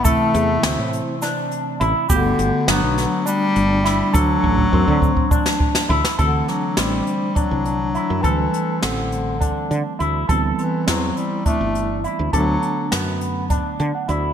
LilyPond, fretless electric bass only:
\new Staff \with { instrumentName = "Fretless electric bass" } { \clef bass \time 7/8 \key d \mixolydian \tempo 4 = 103 a,,8 e,8 d,16 a,8 r4 r16 a,,16 r16 | g,,8 g,,16 r16 g,,16 b,,8 r8. g,,4 | d,8 a,,8 fis,16 d8 r4 r16 d,16 r16 | d,8 r8 a,,8 r8. c,4 fis,16 |
d,8 r8 a,,4. d16 r16 d,8 | d,8 r8 e,8 r8. g,,4 d,16 | d,8 r8 fis,4. d16 r16 d,8 | }